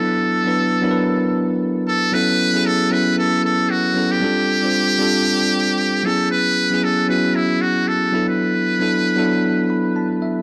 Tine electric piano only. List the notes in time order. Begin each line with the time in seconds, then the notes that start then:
Already playing: F#3 B3 D4 E4 A4
0.44 F#3 B3 D4 E4 B4
0.81 F#3 B3 D4 E4 A#4
0.91 B4
2.12 F#3 B3 C#4 E4 A4
2.53 F#3 B3 C#4 E4 G#4
2.90 F#3 B3 C#4 E4 B4
3.94 F#3 B3 C#4 E4 A4
4.20 G3 C4 D4 F4 A4
4.62 G3 C4 D4 F4 C5
4.99 G3 C4 D4 F4 A4
6.03 F#3 B3 C#4 E4 G#4
6.70 F#3 B3 C#4 E4 G#4
7.07 F#3 B3 C#4 E4 F#4
8.12 F#3 B3 D4 E4 A4
8.79 F#3 B3 D4 E4 A4
9.16 F#3 B3 D4 E4 A4
9.70 B5
9.96 A5
10.22 E5